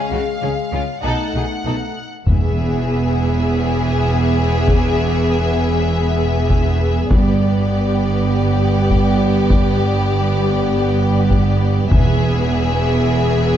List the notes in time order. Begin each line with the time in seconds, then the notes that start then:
Already playing: G#3 G#4 F5
0.11 C#2 C#3 C#4 F#4
0.42 C#2 C#3 C#4 G#4
0.72 C#2 C#3 C#4 F4
1.03 B1 B2 A3 D#4 A4 F#5
1.34 B1 B2 D#4 G#4
1.65 B1 B2 D#4 A4
2.26 E1 E2 B3 G#4 E5, taiko
4.68 taiko
6.50 taiko
7.10 G1 G2 B3 G4 D5, taiko
8.91 taiko
9.50 taiko
11.31 taiko
11.91 E1 E2 B3 G#4 E5, taiko